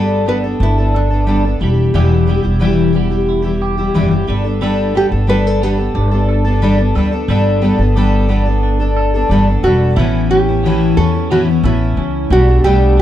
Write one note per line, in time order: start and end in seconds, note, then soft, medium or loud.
0.00 0.56 G1 medium
0.00 0.25 G3 medium
0.00 1.61 G3 medium
0.00 0.26 B3 medium
0.00 0.27 B3 medium
0.00 0.27 D4 medium
0.00 0.25 A4 medium
0.00 0.28 A4 medium
0.00 0.93 A4 medium
0.26 0.43 G3 medium
0.26 0.44 B3 medium
0.26 0.44 D4 medium
0.26 0.42 A4 medium
0.26 0.37 B4 medium
0.44 0.79 B3 soft
0.44 0.78 D4 soft
0.44 0.77 A4 soft
0.60 1.57 G1 medium
0.60 1.27 D4 medium
0.60 0.93 E4 medium
0.78 1.12 B3 soft
0.78 1.11 D4 soft
0.78 1.09 A4 soft
0.94 1.58 D4 medium
0.94 1.68 A4 medium
1.10 1.26 B3 soft
1.10 1.27 D4 soft
1.10 1.27 A4 soft
1.26 1.44 G3 medium
1.26 1.44 B3 medium
1.26 1.45 D4 medium
1.26 1.44 A4 medium
1.45 1.60 B3 soft
1.45 1.61 D4 soft
1.45 1.61 A4 soft
1.59 1.92 E1 medium
1.59 1.94 E3 soft
1.59 1.94 G3 medium
1.59 1.94 E4 medium
1.59 1.94 G4 medium
1.94 2.40 E1 medium
1.94 2.28 E2 medium
1.94 2.28 B2 medium
1.94 2.25 E3 medium
1.94 2.26 G3 medium
1.94 2.28 E4 medium
1.94 2.28 G4 medium
2.27 2.44 E3 medium
2.27 2.44 G3 medium
2.27 2.95 B3 medium
2.27 2.42 E4 medium
2.27 2.41 G4 medium
2.43 3.91 E1 medium
2.43 2.59 E3 soft
2.43 2.60 G3 soft
2.43 2.60 E4 soft
2.43 2.60 G4 soft
2.60 2.94 E2 medium
2.60 2.94 B2 medium
2.60 2.91 E3 medium
2.60 2.92 G3 medium
2.60 2.94 E4 medium
2.60 2.94 G4 medium
2.93 3.10 E3 medium
2.93 3.11 G3 medium
2.93 4.65 B3 medium
2.93 3.10 E4 medium
2.93 3.09 G4 medium
3.10 3.44 E3 soft
3.10 3.43 G3 medium
3.10 3.43 E4 medium
3.10 3.41 G4 medium
3.29 3.94 E4 medium
3.42 3.78 E3 soft
3.42 3.78 G3 medium
3.42 3.77 E4 soft
3.42 3.76 G4 medium
3.62 4.62 G4 medium
3.78 3.94 E3 soft
3.78 3.94 G3 soft
3.78 3.95 E4 medium
3.78 3.95 G4 medium
3.94 4.26 F#1 medium
3.94 4.11 E2 medium
3.94 4.12 B2 medium
3.94 4.12 E3 medium
3.94 4.11 G3 medium
3.94 4.10 E4 medium
3.94 4.09 G4 loud
4.11 4.27 E3 soft
4.11 4.26 G3 soft
4.11 4.28 E4 soft
4.11 4.28 G4 medium
4.27 5.08 G1 medium
4.27 4.45 G3 medium
4.27 4.45 B3 medium
4.27 4.45 D4 medium
4.27 4.43 A4 medium
4.44 4.61 B3 soft
4.44 4.61 D4 soft
4.44 4.61 A4 medium
4.61 4.93 G3 medium
4.61 4.94 B3 medium
4.61 4.95 D4 medium
4.61 4.95 A4 medium
4.95 5.12 G3 soft
4.95 5.12 B3 medium
4.95 5.12 D4 medium
4.95 5.06 G4 medium
4.95 5.10 A4 medium
5.12 5.91 G1 medium
5.12 5.27 B3 soft
5.12 5.28 D4 soft
5.12 5.28 A4 medium
5.27 5.61 G3 medium
5.27 5.62 B3 medium
5.27 5.62 D4 medium
5.27 5.62 A4 medium
5.27 5.47 B4 loud
5.47 5.63 A4 medium
5.62 5.79 G3 soft
5.62 5.79 B3 medium
5.62 5.78 D4 medium
5.62 6.96 G4 medium
5.62 5.76 A4 medium
5.78 6.13 B3 soft
5.78 6.11 D4 soft
5.78 6.10 A4 soft
5.95 6.91 G1 medium
5.95 6.61 D4 medium
6.11 6.46 B3 soft
6.11 6.45 D4 soft
6.11 6.43 A4 medium
6.29 6.95 A4 medium
6.45 6.62 B3 medium
6.45 6.62 D4 medium
6.45 6.62 A4 medium
6.62 6.79 G3 medium
6.62 6.79 B3 medium
6.62 6.78 D4 medium
6.62 6.77 A4 medium
6.78 6.95 B3 soft
6.78 6.96 D4 soft
6.78 6.95 A4 medium
6.95 7.26 D2 medium
6.95 7.12 G3 medium
6.95 7.13 B3 medium
6.95 7.12 D4 medium
6.95 7.10 A4 medium
7.11 7.29 B3 soft
7.11 7.29 D4 soft
7.11 7.29 A4 medium
7.28 7.75 G1 medium
7.28 7.60 G3 medium
7.28 7.61 B3 medium
7.28 7.63 D4 medium
7.28 7.63 A4 medium
7.62 7.79 G3 medium
7.62 7.79 B3 medium
7.62 7.80 D4 medium
7.62 7.78 A4 medium
7.79 9.25 G1 medium
7.79 7.96 B3 soft
7.79 7.96 D4 medium
7.79 7.96 A4 medium
7.97 8.27 G3 medium
7.97 8.29 B3 medium
7.97 8.30 D4 medium
7.97 8.30 A4 medium
8.29 8.46 G3 medium
8.29 8.46 B3 medium
8.29 8.46 D4 medium
8.29 8.45 A4 medium
8.46 8.81 B3 medium
8.46 8.80 D4 soft
8.46 8.79 A4 medium
8.63 9.29 D4 medium
8.80 9.14 B3 soft
8.80 9.14 D4 medium
8.80 9.13 A4 medium
8.97 9.63 A4 medium
9.14 9.30 B3 soft
9.14 9.31 D4 medium
9.14 9.30 A4 medium
9.29 9.60 G1 medium
9.29 9.47 G3 medium
9.29 9.47 B3 medium
9.29 9.48 D4 medium
9.29 9.46 A4 medium
9.47 9.65 B3 soft
9.47 9.64 D4 soft
9.47 9.64 A4 medium
9.63 9.94 E1 medium
9.63 9.97 G3 medium
9.63 9.98 B3 medium
9.63 9.98 D4 medium
9.63 9.96 F#4 medium
9.63 9.98 A4 medium
9.96 10.93 A1 medium
9.96 10.47 A2 medium
9.96 10.48 E3 medium
9.96 10.48 B3 medium
9.96 10.48 C#4 medium
9.96 10.30 E4 medium
9.96 10.47 E4 medium
9.96 11.64 A4 medium
10.30 10.96 C#4 medium
10.30 10.97 G4 medium
10.48 10.65 B3 soft
10.48 10.65 C#4 soft
10.48 10.64 E4 medium
10.65 10.98 A2 medium
10.65 10.96 E3 medium
10.65 10.97 B3 medium
10.65 10.98 C#4 medium
10.65 10.99 E4 medium
10.97 11.60 E2 medium
10.97 11.13 E3 medium
10.97 11.14 B3 medium
10.97 11.15 C#4 medium
10.97 11.13 E4 medium
10.97 11.31 A4 medium
11.14 11.31 B3 soft
11.14 11.31 C#4 soft
11.14 11.31 E4 soft
11.31 11.47 A2 medium
11.31 11.47 E3 medium
11.31 11.48 B3 medium
11.31 11.48 C#4 medium
11.31 11.47 E4 medium
11.31 11.40 F#4 medium
11.49 11.64 B3 soft
11.49 11.65 C#4 medium
11.49 11.64 E4 soft
11.63 11.94 A1 loud
11.63 12.30 E3 medium
11.63 12.31 B3 medium
11.63 12.32 C#4 medium
11.63 12.33 E4 medium
11.63 12.32 E4 medium
11.63 12.65 A4 medium
11.97 12.28 C#2 medium
11.97 12.37 C#4 medium
12.30 12.61 B1 loud
12.30 12.47 G3 medium
12.30 12.48 A3 medium
12.30 12.64 B3 medium
12.30 12.48 D4 medium
12.30 12.64 F#4 loud
12.30 12.46 G4 medium
12.48 12.65 A3 soft
12.48 12.65 D4 soft
12.48 12.64 G4 soft
12.64 13.02 B1 loud
12.64 13.02 B2 medium
12.64 13.02 G3 medium
12.64 13.02 A3 medium
12.64 13.02 B3 medium
12.64 13.02 D4 medium
12.64 12.98 G4 loud
12.64 13.02 G4 medium
12.64 13.02 A4 medium
12.97 13.02 D4 medium